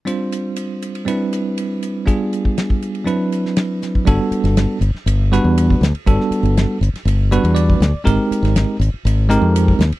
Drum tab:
RD |x-x-x-xxx-x-x-x-|x-x-x-xxx-x-x---|x-xxx-x-x-x-x-xx|x-xxx-xxx-xxx-x-|
HH |p-p-p-p-p-p-p-p-|p-p-p-p-p-p-p-p-|p-p-p-p-p-p-p-p-|p-p-p-p-p-p-p-p-|
SD |----------------|----o------oo-o-|---oo--o--o---o-|-o--o--o------o-|
BD |----------------|o--o-o---------o|o------------o--|o------------o--|

RD |x-xxx-x-x-x-x-xx|
HH |p-p-p-p-p-p-p-p-|
SD |---oo---------o-|
BD |o------------o--|